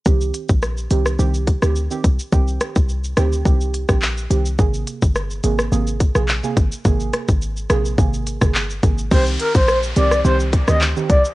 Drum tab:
CC |----------------|----------------|----------------|----------------|
HH |--x---x---x---x-|--x---x---x---x-|--x---x---x---x-|--x---x---x---x-|
SH |xxxxxxxxxxxxxxxx|xxxxxxxxxxxxxxxx|xxxxxxxxxxxxxxxx|xxxxxxxxxxxxxxxx|
CP |----------------|------------x---|------------x---|------------x---|
SD |----r--r---r----|--r---r----r----|----r--r---r----|--r---r----r----|
BD |o--o------o---o-|o--o----o--o----|o--o------o---o-|o--o----o--o--o-|

CC |x---------------|
HH |--x---x---x---x-|
SH |xxxxxxxxxxxxxxxx|
CP |------------x---|
SD |----r--r---r----|
BD |o--o------o---o-|